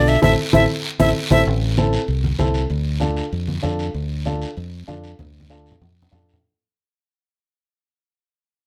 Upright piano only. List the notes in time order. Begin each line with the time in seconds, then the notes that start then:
Already playing: D4 F4 A4
0.22 C4 E4 A4
0.53 C4 E4 A4
1.00 C4 E4 A4
1.31 C4 E4 A4
1.78 C4 E4 A4
2.38 C4 E4 A4
3.00 D4 F4 A4
3.62 D4 F4 A4
4.25 D4 F4 A4
4.88 D4 F4 A4
5.50 D4 F4 A4
6.11 D4 F4 A4